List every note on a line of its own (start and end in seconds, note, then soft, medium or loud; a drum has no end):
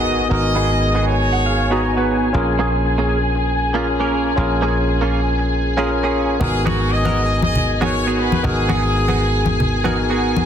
0.00 0.28 G#1 medium
0.00 0.24 B3 medium
0.00 0.27 B3 medium
0.00 0.28 D#4 medium
0.00 0.25 F#4 medium
0.00 0.28 F#4 medium
0.00 0.25 G#4 medium
0.00 6.39 G#4 medium
0.00 0.28 A#4 medium
0.00 0.29 D#5 loud
0.00 6.39 G#5 medium
0.00 impact medium
0.29 2.32 G#1 medium
0.29 1.68 B3 medium
0.29 1.68 D#4 medium
0.29 1.68 F#4 medium
0.29 1.69 A#4 medium
0.29 1.03 D#5 loud
0.55 0.69 B3 loud
0.55 0.70 F#4 medium
0.55 0.70 G#4 loud
0.81 muted clean electric guitar stroke soft
0.95 1.13 B3 medium
0.95 1.14 F#4 medium
0.95 1.14 G#4 medium
1.07 2.05 C#5 medium
1.07 1.31 G#5 medium
1.32 1.45 F#5 medium
1.32 muted clean electric guitar stroke soft
1.46 1.81 F5 medium
1.70 2.31 B3 medium
1.70 1.83 B3 loud
1.70 2.31 D#4 medium
1.70 1.83 F#4 medium
1.70 2.31 F#4 medium
1.70 1.83 G#4 loud
1.70 2.32 A#5 medium
1.83 1.96 D#5 medium
1.96 2.28 B3 medium
1.96 2.28 F#4 medium
1.96 2.28 B4 medium
1.96 2.31 C#5 medium
2.33 4.35 A#1 medium
2.33 3.71 C#4 medium
2.33 3.71 F4 medium
2.33 3.72 G#4 medium
2.33 3.72 A#4 medium
2.59 2.73 A#3 loud
2.59 2.73 C#4 medium
2.59 2.73 G#4 loud
2.84 muted clean electric guitar stroke soft
2.98 3.17 A#3 medium
2.98 3.17 C#4 medium
2.98 3.17 G#4 medium
3.35 muted clean electric guitar stroke soft
3.74 3.86 A#3 loud
3.74 4.34 C#4 medium
3.74 3.86 C#4 loud
3.74 4.34 F4 medium
3.74 3.87 F4 loud
3.74 4.35 G#4 medium
3.74 4.35 A#4 medium
4.00 4.31 A#3 medium
4.00 4.31 C#4 medium
4.00 4.32 A#4 medium
4.36 6.38 A#1 medium
4.36 5.74 C#4 medium
4.36 5.74 F4 medium
4.36 5.75 G#4 medium
4.36 5.75 A#4 medium
4.62 4.76 A#3 loud
4.62 4.76 C#4 medium
4.62 4.77 G#4 loud
4.88 muted clean electric guitar stroke soft
5.01 5.20 A#3 medium
5.01 5.20 C#4 medium
5.01 5.21 F4 medium
5.38 muted clean electric guitar stroke soft
5.77 5.90 A#3 loud
5.77 6.37 C#4 medium
5.77 5.90 C#4 medium
5.77 6.38 F4 medium
5.77 6.38 G#4 medium
5.77 5.90 G#4 loud
5.77 6.38 A#4 loud
6.03 6.35 A#3 medium
6.03 6.35 C#4 medium
6.03 6.35 G#4 medium
6.40 8.42 G#1 medium
6.40 7.78 B3 medium
6.40 7.78 D#4 medium
6.40 7.78 F#4 medium
6.40 10.46 G#4 medium
6.40 6.64 G#4 medium
6.40 7.79 A#4 medium
6.40 10.46 G#5 medium
6.40 low conga medium
6.66 6.80 B3 loud
6.66 6.80 F#4 medium
6.66 6.92 F#4 medium
6.66 6.80 G#4 loud
6.66 high conga medium
6.91 7.42 D#5 loud
6.91 muted clean electric guitar stroke soft
7.05 7.24 B3 medium
7.05 7.24 F#4 medium
7.05 7.24 A#4 medium
7.05 high conga medium
7.42 7.72 D#5 medium
7.42 muted clean electric guitar stroke soft
7.42 high conga medium
7.55 low conga medium
7.74 7.82 D#5 medium
7.80 8.41 B3 medium
7.80 7.93 B3 loud
7.80 8.41 D#4 medium
7.80 7.93 F#4 medium
7.80 8.41 F#4 medium
7.80 7.94 G#4 loud
7.80 8.42 A#4 medium
7.80 8.12 C#5 medium
7.80 high conga medium
8.07 8.38 B3 medium
8.07 8.38 F#4 medium
8.07 8.39 G#4 medium
8.13 8.19 C#5 medium
8.19 8.44 B4 medium
8.32 high conga medium
8.43 10.45 G#1 medium
8.43 9.81 B3 medium
8.43 9.81 D#4 medium
8.43 9.82 F#4 medium
8.43 9.97 G#4 medium
8.43 9.82 A#4 medium
8.43 low conga medium
8.69 8.83 B3 loud
8.69 8.83 F#4 medium
8.69 8.83 G#4 loud
8.69 high conga medium
8.95 muted clean electric guitar stroke soft
9.08 9.27 B3 medium
9.08 9.27 F#4 medium
9.08 9.28 G#4 medium
9.08 high conga medium
9.45 muted clean electric guitar stroke soft
9.45 high conga medium
9.60 low conga medium
9.84 10.44 B3 medium
9.84 9.96 B3 loud
9.84 10.45 D#4 medium
9.84 9.97 F#4 loud
9.84 10.45 F#4 medium
9.84 9.97 G#4 loud
9.84 10.45 A#4 medium
9.84 high conga medium
10.10 10.41 B3 medium
10.10 10.42 F#4 medium
10.10 10.42 G#4 medium
10.36 high conga medium